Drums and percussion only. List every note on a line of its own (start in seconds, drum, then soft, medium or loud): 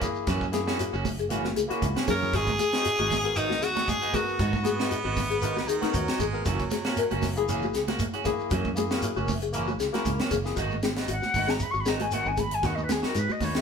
0.01 kick medium
0.01 closed hi-hat soft
0.01 low conga medium
0.01 shekere medium
0.16 shekere soft
0.27 kick loud
0.27 snare soft
0.27 closed hi-hat medium
0.27 shekere loud
0.41 kick medium
0.41 shekere soft
0.53 snare soft
0.53 closed hi-hat medium
0.53 high conga loud
0.53 shekere medium
0.68 snare medium
0.68 shekere soft
0.79 closed hi-hat medium
0.79 shekere medium
0.94 shekere soft
1.05 kick medium
1.05 open hi-hat medium
1.05 high conga loud
1.05 low conga medium
1.05 shekere medium
1.19 closed hi-hat soft
1.19 shekere soft
1.30 closed hi-hat medium
1.30 high conga medium
1.30 shekere medium
1.45 snare soft
1.45 high conga medium
1.45 shekere soft
1.56 closed hi-hat medium
1.56 high conga medium
1.56 shekere medium
1.70 closed hi-hat soft
1.70 shekere soft
1.82 kick medium
1.82 closed hi-hat medium
1.82 low conga medium
1.82 shekere medium
1.96 snare medium
1.96 closed hi-hat soft
1.96 low conga medium
1.96 shekere soft
2.08 kick medium
2.08 snare soft
2.08 closed hi-hat medium
2.08 low conga loud
2.08 shekere medium
2.22 low conga medium
2.22 shekere soft
2.33 kick loud
2.33 closed hi-hat medium
2.33 shekere medium
2.47 kick medium
2.47 closed hi-hat soft
2.47 high conga medium
2.47 shekere soft
2.59 closed hi-hat medium
2.59 high conga loud
2.59 shekere medium
2.73 snare medium
2.73 closed hi-hat soft
2.73 shekere soft
2.84 closed hi-hat medium
2.84 shekere medium
2.98 closed hi-hat soft
2.98 high conga medium
2.98 shekere soft
3.10 kick medium
3.10 snare soft
3.10 open hi-hat medium
3.10 high conga medium
3.10 low conga medium
3.10 shekere medium
3.24 closed hi-hat soft
3.24 shekere soft
3.36 closed hi-hat medium
3.36 shekere loud
3.50 snare soft
3.50 high conga medium
3.50 shekere soft
3.62 snare soft
3.62 closed hi-hat soft
3.62 shekere medium
3.76 snare soft
3.76 closed hi-hat soft
3.76 high conga loud
3.76 shekere soft
3.88 kick medium
3.88 closed hi-hat medium
3.88 high conga medium
3.88 shekere medium
4.02 closed hi-hat soft
4.02 shekere soft
4.14 kick medium
4.14 closed hi-hat medium
4.14 high conga medium
4.14 low conga medium
4.14 shekere medium
4.28 shekere soft
4.39 kick loud
4.39 closed hi-hat medium
4.39 shekere medium
4.53 kick medium
4.53 high conga medium
4.53 shekere soft
4.65 closed hi-hat medium
4.65 high conga loud
4.65 shekere medium
4.80 snare medium
4.80 shekere soft
4.91 closed hi-hat medium
4.91 shekere medium
5.05 shekere soft
5.16 kick medium
5.16 snare soft
5.16 open hi-hat medium
5.16 high conga medium
5.16 low conga medium
5.16 shekere medium
5.30 closed hi-hat soft
5.30 shekere soft
5.42 closed hi-hat medium
5.42 low conga medium
5.42 shekere medium
5.56 snare soft
5.56 high conga medium
5.56 shekere soft
5.68 closed hi-hat medium
5.68 shekere medium
5.82 snare soft
5.82 closed hi-hat soft
5.82 high conga loud
5.82 shekere soft
5.94 kick medium
5.94 closed hi-hat medium
5.94 high conga medium
5.94 shekere medium
6.08 snare medium
6.08 closed hi-hat soft
6.08 shekere soft
6.20 kick medium
6.20 closed hi-hat medium
6.20 high conga medium
6.20 low conga medium
6.20 shekere medium
6.34 shekere soft
6.45 kick loud
6.45 closed hi-hat medium
6.45 shekere medium
6.59 kick medium
6.59 closed hi-hat soft
6.59 shekere soft
6.70 snare soft
6.70 closed hi-hat medium
6.70 high conga loud
6.70 shekere medium
6.84 snare medium
6.84 closed hi-hat soft
6.84 shekere soft
6.96 closed hi-hat medium
6.96 shekere medium
7.10 closed hi-hat soft
7.10 high conga medium
7.10 shekere soft
7.22 kick medium
7.22 snare soft
7.22 open hi-hat medium
7.22 high conga medium
7.22 low conga medium
7.22 shekere medium
7.36 closed hi-hat soft
7.36 shekere soft
7.48 closed hi-hat medium
7.48 low conga medium
7.48 shekere loud
7.62 high conga medium
7.62 shekere soft
7.74 snare soft
7.74 closed hi-hat medium
7.74 shekere medium
7.88 snare soft
7.88 closed hi-hat soft
7.88 high conga loud
7.88 shekere soft
7.99 kick medium
7.99 closed hi-hat medium
7.99 high conga medium
7.99 shekere loud
8.13 closed hi-hat soft
8.13 shekere soft
8.25 kick medium
8.25 closed hi-hat medium
8.25 high conga medium
8.25 low conga medium
8.25 shekere medium
8.39 shekere soft
8.51 kick loud
8.51 closed hi-hat medium
8.51 shekere medium
8.65 kick medium
8.65 high conga medium
8.65 shekere soft
8.77 closed hi-hat medium
8.77 high conga loud
8.77 shekere medium
8.90 snare medium
8.90 shekere soft
9.02 closed hi-hat medium
9.02 shekere loud
9.17 high conga medium
9.17 shekere soft
9.28 kick medium
9.28 open hi-hat medium
9.28 high conga loud
9.28 low conga medium
9.28 shekere medium
9.42 closed hi-hat soft
9.42 shekere soft
9.53 closed hi-hat medium
9.53 shekere medium
9.68 high conga medium
9.68 shekere soft
9.80 snare soft
9.80 closed hi-hat soft
9.80 shekere medium
9.93 snare soft
9.93 closed hi-hat soft
9.93 high conga loud
9.93 shekere soft
10.05 kick medium
10.05 closed hi-hat medium
10.05 high conga medium
10.05 shekere medium
10.19 snare medium
10.19 closed hi-hat soft
10.19 shekere soft
10.31 kick medium
10.31 closed hi-hat medium
10.31 low conga medium
10.31 shekere medium
10.45 snare soft
10.45 shekere soft
10.57 kick loud
10.57 closed hi-hat medium
10.57 shekere medium
10.71 high conga medium
10.71 shekere soft
10.82 snare medium
10.82 closed hi-hat medium
10.82 high conga medium
10.82 shekere medium
10.96 snare medium
10.96 closed hi-hat soft
10.96 shekere soft
11.08 closed hi-hat medium
11.08 shekere medium
11.22 snare soft
11.22 high conga medium
11.22 shekere soft
11.34 kick medium
11.34 open hi-hat medium
11.34 high conga medium
11.34 low conga medium
11.34 shekere medium
11.48 snare medium
11.48 shekere soft
11.60 kick medium
11.60 closed hi-hat medium
11.60 low conga medium
11.60 shekere medium
11.74 shekere soft
11.86 snare medium
11.86 closed hi-hat soft
11.86 shekere medium
11.99 closed hi-hat medium
11.99 high conga loud
11.99 shekere soft
12.11 closed hi-hat medium
12.11 high conga medium
12.11 shekere medium
12.25 shekere soft
12.37 kick medium
12.37 closed hi-hat medium
12.37 high conga medium
12.37 low conga medium
12.37 shekere medium
12.51 closed hi-hat medium
12.51 shekere soft
12.63 kick loud
12.63 snare soft
12.63 closed hi-hat medium
12.63 shekere medium
12.78 high conga medium
12.78 shekere soft
12.89 snare medium
12.89 closed hi-hat medium
12.89 high conga loud
12.89 shekere medium
13.03 snare medium
13.03 shekere soft
13.14 closed hi-hat medium
13.14 shekere medium
13.30 high conga medium
13.30 shekere soft
13.40 kick medium
13.40 open hi-hat medium
13.40 high conga medium
13.40 low conga medium
13.40 shekere medium
13.54 snare medium
13.54 closed hi-hat medium
13.54 shekere soft